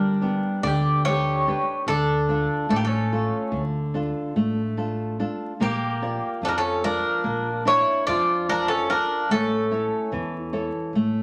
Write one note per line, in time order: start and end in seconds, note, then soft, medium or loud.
0.00 0.37 G1 medium
0.00 0.61 G3 medium
0.00 0.61 D4 medium
0.00 0.63 A#4 medium
0.21 0.88 B3 medium
0.21 0.88 D4 soft
0.21 0.88 G4 soft
0.62 1.50 D2 medium
0.62 1.44 D3 medium
0.62 1.02 D5 medium
0.67 1.04 G4 medium
1.05 1.46 D4 soft
1.05 1.47 G4 soft
1.05 1.85 G4 medium
1.05 1.47 B4 medium
1.05 1.84 C#5 loud
1.47 1.80 D4 medium
1.47 1.80 G4 soft
1.47 1.81 B4 medium
1.86 2.45 D2 medium
1.86 2.68 D3 medium
1.86 2.68 D4 medium
1.86 2.66 A4 medium
2.29 2.95 D4 soft
2.29 2.95 F4 soft
2.29 2.96 A4 medium
2.69 3.28 A1 medium
2.69 3.50 A3 medium
2.69 2.78 D4 medium
2.69 2.77 A4 medium
2.76 2.85 A#3 soft
2.76 2.84 G4 medium
2.85 3.61 C#4 medium
2.85 3.59 A4 medium
3.12 3.78 F4 soft
3.12 3.79 A4 medium
3.52 4.10 D2 medium
3.52 4.33 D3 medium
3.94 4.60 D4 medium
3.94 4.61 F4 soft
3.94 4.61 A4 medium
4.36 5.23 A1 medium
4.36 5.16 A3 medium
4.77 5.18 D4 soft
4.77 5.19 F4 soft
4.77 5.19 A4 medium
5.19 5.52 D4 medium
5.19 5.52 F4 soft
5.19 5.52 A4 medium
5.60 6.18 A#1 medium
5.60 6.40 A#3 medium
5.60 6.39 A#3 medium
5.60 6.40 G4 medium
6.02 6.68 F4 soft
6.02 6.68 A#4 soft
6.02 6.68 D5 medium
6.42 7.00 F2 medium
6.42 7.23 F3 medium
6.42 6.48 D4 medium
6.42 6.48 A4 medium
6.48 6.56 D4 medium
6.48 6.56 A#4 medium
6.58 6.82 C#4 medium
6.58 6.84 A4 medium
6.84 7.63 D4 medium
6.84 7.50 F4 medium
6.84 7.62 A#4 loud
6.84 7.50 A#4 soft
6.84 7.50 D5 medium
7.24 7.82 A#1 medium
7.24 8.04 A#3 medium
7.65 8.31 D4 medium
7.65 8.05 E4 medium
7.65 8.31 A#4 soft
7.65 8.05 C#5 medium
8.07 8.94 F2 medium
8.07 8.87 F3 medium
8.07 8.46 F4 medium
8.07 8.49 D5 medium
8.48 8.68 D4 medium
8.48 8.89 F4 soft
8.48 8.89 A#4 soft
8.48 8.68 A#4 loud
8.48 8.89 D5 medium
8.68 8.88 C#4 medium
8.68 8.87 A4 medium
8.90 9.29 D4 medium
8.90 9.22 F4 medium
8.90 9.31 A#4 medium
8.90 9.22 A#4 soft
8.90 9.23 D5 medium
9.29 9.87 A1 medium
9.29 10.10 A3 medium
9.29 11.23 C#4 medium
9.29 11.23 A4 medium
9.71 10.37 E4 soft
9.71 10.37 A4 soft
9.71 10.38 C#5 medium
10.12 10.69 E2 medium
10.12 10.92 E3 medium
10.53 11.18 E4 soft
10.53 11.19 A4 soft
10.53 11.18 C#5 medium
10.93 11.23 A1 medium
10.93 11.23 A3 medium